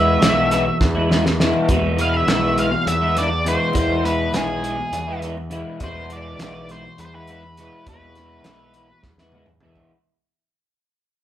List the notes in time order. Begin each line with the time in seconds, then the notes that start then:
Already playing: E2 B2 E3 G#3 B3 E4 E5
0.21 B1 E2 B2 E3 G#3 B3 E4, snare, closed hi-hat, low conga
0.50 E3 G#3 B3 E4, snare, closed hi-hat
0.66 muted clean electric guitar stroke, high conga
0.80 E2, kick, snare, low conga
0.95 E3 G#3 B3 E4, high conga
1.09 E3 G#3 B3 E4, snare, high conga
1.24 muted clean electric guitar stroke, snare, high conga
1.39 E2 B2 E3 G#3 B3 E4, snare, low conga
1.53 low conga
1.68 E2 B2 E3 G#3 B3 E4, kick, closed hi-hat, high conga
1.83 low conga
1.98 E3 G#3 B3 E4 F5, closed hi-hat
2.17 E5
2.26 B1 E2 B2 E3 G#3 B3 E4, snare, closed hi-hat, low conga
2.32 E5
2.56 E3 G#3 B3 E4 F5, closed hi-hat
2.71 muted clean electric guitar stroke, high conga
2.85 E2 E5, closed hi-hat, low conga
3.01 E3 G#3 B3 E4, low conga
3.15 E3 G#3 B3 E4 D5, snare, closed hi-hat
3.30 muted clean electric guitar stroke, low conga
3.45 E2 B2 E3 G#3 B3 E4 C5, closed hi-hat
3.73 E2 B2 E3 G#3 B3 E4, kick, closed hi-hat, high conga
3.87 low conga
4.04 E3 G#3 B3 E4 B4, closed hi-hat
4.33 B1 E2 B2 E3 G#3 B3 E4 G#4, snare, closed hi-hat, low conga
4.63 E3 G#3 B3 E4, closed hi-hat
4.77 muted clean electric guitar stroke, high conga
4.92 E2, closed hi-hat, low conga
5.07 E3 G#3 B3 E4
5.22 E3 G#3 B3 E4, closed hi-hat
5.37 muted clean electric guitar stroke, low conga
5.50 E2 B2 E3 G#3 B3 E4, closed hi-hat
5.80 E2 B2 E3 G#3 B3 E4, kick, closed hi-hat, high conga
5.84 C5
5.95 low conga
6.09 E3 G#3 B3 E4 D5, closed hi-hat
6.39 B1 E2 B2 E3 G#3 B3 E4 D5, snare, closed hi-hat, low conga
6.69 E3 G#3 B3 E4 C5, closed hi-hat
6.84 muted clean electric guitar stroke, high conga
6.98 E2 B4, closed hi-hat, low conga
7.05 C5
7.14 E3 G#3 B3 E4 B4
7.27 E3 G#3 B3 E4, closed hi-hat
7.43 muted clean electric guitar stroke, low conga
7.57 E2 B2 E3 G#3 B3 E4, closed hi-hat
7.86 E2 B2 E3 G#3 B3 B4, kick, closed hi-hat, high conga, low conga
7.91 E4
8.03 low conga
8.15 E3 G#3 B3, snare, closed hi-hat
8.20 E4
8.44 B1 E2 B2 E3 G#3, snare, closed hi-hat, low conga
8.48 B3 E4
8.74 E3 G#3 B3 E4, closed hi-hat, low conga
8.90 muted clean electric guitar stroke, high conga
9.03 E2, kick, snare, low conga
9.18 E3 G#3 B3 E4, snare
9.32 E3 G#3 B3 E4, high tom
9.46 muted clean electric guitar stroke, mid tom, low conga
9.60 E2 B2 E3 G#3 B3 E4, mid tom
9.76 floor tom